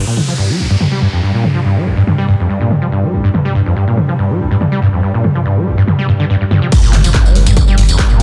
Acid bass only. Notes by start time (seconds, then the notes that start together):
0.07 A#2
0.17 G2
0.28 F3
0.38 G2
0.49 G3
0.59 G1
0.70 G2
0.81 G2
0.92 G3
1.02 G2
1.13 F2
1.23 G2
1.34 A#2
1.44 G2
1.55 F3
1.65 G2
1.76 G3
1.86 G1
1.97 G2
2.07 G2
2.18 G3
2.28 G2
2.40 F2
2.50 G2
2.61 A#2
2.71 G2
2.82 F3
2.92 G2
3.03 G3
3.13 G1
3.24 G2
3.34 G2
3.45 G3
3.55 G2
3.66 F2
3.76 G2
3.88 A#2
3.98 G2
4.09 F3
4.19 G2
4.30 G3
4.40 G1
4.51 G2
4.61 G2
4.72 G3
4.82 G2
4.93 F2
5.03 G2
5.14 A#2
5.24 G2
5.35 F3
5.46 G2
5.56 G3
5.67 G1
5.78 G2
5.88 G2
5.99 G3
6.09 G2
6.20 D3
6.30 G2
6.41 G2
6.51 G2
6.62 F3
6.72 G2
6.83 A#2
6.93 G2
7.04 F3
7.15 G2
7.26 G3
7.36 G1
7.47 G2
7.57 G2
7.68 G3
7.78 G2
7.89 F2
7.99 G2
8.10 A#2